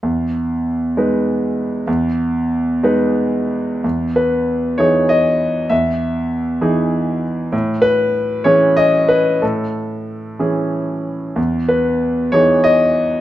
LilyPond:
<<
  \new Staff \with { instrumentName = "Grand piano" } { \time 6/8 \key e \major \tempo 4. = 64 r2. | r2. | r8 b'4 cis''8 dis''4 | e''2~ e''8 r8 |
r8 b'4 cis''8 dis''8 b'8 | a'4. r4. | r8 b'4 cis''8 dis''4 | }
  \new Staff \with { instrumentName = "Grand piano" } { \time 6/8 \key e \major e,4. <gis dis' b'>4. | e,4. <gis dis' b'>4. | e,4. <e dis' gis'>4. | e,4. <e dis' gis'>4. |
a,4. <e cis' gis'>4. | a,4. <e cis' gis'>4. | e,4. <e dis' gis'>4. | }
>>